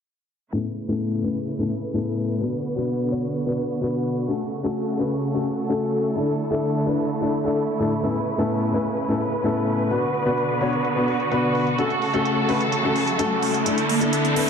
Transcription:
0.53 grand piano A2 B3 C#4 E4 A4, string section C#3 A3 E4 B4, closed hi-hat
0.77 closed hi-hat
0.88 grand piano A2 B3 C#4 E4 A4, closed hi-hat
1.00 closed hi-hat
1.23 grand piano A2 B3 C#4 E4 B4, closed hi-hat
1.35 closed hi-hat
1.47 closed hi-hat
1.58 grand piano A2 B3 C#4 E4 A4
1.71 closed hi-hat
1.93 grand piano A2 B3 C#4 E4 A4, closed hi-hat
2.17 closed hi-hat
2.29 closed hi-hat
2.40 grand piano B2 B3 D4 F#4 B4, string section D3 B3 F#4, closed hi-hat
2.53 closed hi-hat
2.64 closed hi-hat
2.76 grand piano B2 B3 D4 F#4 B4, closed hi-hat
2.88 closed hi-hat
3.11 grand piano B2 B3 D4 F#4 C#5, closed hi-hat
3.23 closed hi-hat
3.35 closed hi-hat
3.46 grand piano B2 B3 D4 F#4 B4
3.58 closed hi-hat
3.70 closed hi-hat
3.81 grand piano B2 B3 D4 F#4 B4, closed hi-hat
4.05 closed hi-hat
4.17 closed hi-hat
4.28 string section C#3 A3 A4, grand piano A3 C#4 F#4 A4, closed hi-hat
4.40 closed hi-hat
4.52 closed hi-hat
4.63 grand piano A3 C#4 F#4 A4, closed hi-hat
4.75 closed hi-hat
4.98 grand piano A3 C#4 F#4 B4, closed hi-hat
5.10 closed hi-hat
5.22 closed hi-hat
5.33 grand piano A3 C#4 F#4 A4
5.45 closed hi-hat
5.57 closed hi-hat
5.68 grand piano A3 C#4 F#4 A4, closed hi-hat
5.92 closed hi-hat
6.04 closed hi-hat
6.15 grand piano D3 A3 D4 E4 A4, string section D3 E4, closed hi-hat
6.28 closed hi-hat
6.39 closed hi-hat
6.50 grand piano D3 A3 D4 E4 A4, closed hi-hat
6.63 closed hi-hat
6.74 closed hi-hat
6.86 grand piano D3 A3 D4 E4 B4, closed hi-hat
6.98 closed hi-hat
7.10 closed hi-hat
7.21 grand piano D3 A3 D4 E4 A4, closed hi-hat
7.33 closed hi-hat
7.44 grand piano D3 A3 D4 E4 A4, closed hi-hat
7.57 closed hi-hat
7.79 grand piano A2 A3 D4 E4 A4, closed hi-hat
7.92 closed hi-hat
8.03 grand piano A2 B3 C#4 E4 A4, string section C#3 B4, closed hi-hat
8.15 closed hi-hat
8.27 open hi-hat
8.38 grand piano A2 B3 C#4 E4 A4, closed hi-hat
8.50 closed hi-hat
8.73 grand piano A2 B3 C#4 E4 B4, open hi-hat
8.85 closed hi-hat
8.97 closed hi-hat
9.08 grand piano A2 B3 C#4 E4 A4
9.21 open hi-hat
9.32 closed hi-hat
9.43 grand piano A2 B3 C#4 E4 A4, closed hi-hat
9.67 open hi-hat
9.79 closed hi-hat
9.90 grand piano B2 B3 D4 F#4 B4, string section D3 B3 F#4, closed hi-hat
10.03 closed hi-hat
10.14 open hi-hat
10.25 grand piano B2 B3 D4 F#4 B4, closed hi-hat
10.38 closed hi-hat
10.61 grand piano B2 B3 D4 F#4 C#5, open hi-hat
10.73 closed hi-hat
10.85 closed hi-hat
10.96 grand piano B2 B3 D4 F#4 B4
11.08 open hi-hat
11.20 closed hi-hat
11.31 grand piano B2 B3 D4 F#4 B4, closed hi-hat
11.55 open hi-hat
11.67 closed hi-hat
11.78 string section C#3 A3 A4, grand piano A3 C#4 F#4 A4, closed hi-hat, riser
11.90 closed hi-hat
12.02 open hi-hat
12.13 grand piano A3 C#4 F#4 A4, closed hi-hat
12.25 closed hi-hat
12.48 grand piano A3 C#4 F#4 B4, open hi-hat
12.61 closed hi-hat
12.72 closed hi-hat
12.83 grand piano A3 C#4 F#4 A4
12.96 open hi-hat
13.07 closed hi-hat
13.18 grand piano A3 C#4 F#4 A4, closed hi-hat
13.43 open hi-hat
13.54 closed hi-hat
13.65 grand piano D3 A3 D4 E4 A4, string section D3 E4 A4, closed hi-hat
13.78 closed hi-hat
13.89 open hi-hat
14.00 grand piano D3 A3 D4 E4 A4, closed hi-hat
14.13 closed hi-hat
14.25 closed hi-hat
14.35 grand piano D3 A3 D4 E4 B4, open hi-hat

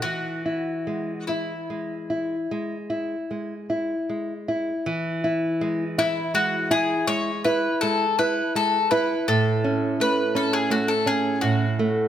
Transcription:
0.02 nylon-string guitar E3, mandolin F#4
0.46 nylon-string guitar E4
0.87 nylon-string guitar G#3
1.27 mandolin E4, nylon-string guitar E4
1.70 nylon-string guitar G#3
2.10 nylon-string guitar E4
2.51 nylon-string guitar G#3
2.90 nylon-string guitar E4
3.31 nylon-string guitar G#3
3.70 nylon-string guitar E4
4.09 nylon-string guitar G#3
4.48 nylon-string guitar E4
4.86 nylon-string guitar E3
5.24 nylon-string guitar E4
5.61 nylon-string guitar G#3
5.98 nylon-string guitar E4, mandolin E4
6.34 nylon-string guitar G#3, mandolin F#4
6.71 nylon-string guitar E4, mandolin G#4
7.07 nylon-string guitar G#3, mandolin C#5
7.44 nylon-string guitar E4, mandolin B4
7.81 nylon-string guitar G#3, mandolin A4
8.19 nylon-string guitar E4, mandolin B4
8.55 nylon-string guitar G#3, mandolin A4
8.91 nylon-string guitar E4, mandolin B4
9.28 nylon-string guitar A2, mandolin A4
9.64 nylon-string guitar C#4
10.00 nylon-string guitar A3, mandolin B4
10.35 nylon-string guitar C#4, mandolin A4
10.53 mandolin G#4
10.70 nylon-string guitar A3, mandolin F#4
10.88 mandolin A4
11.06 nylon-string guitar C#4, mandolin G#4
11.41 nylon-string guitar A2, mandolin F#4
11.79 nylon-string guitar A3

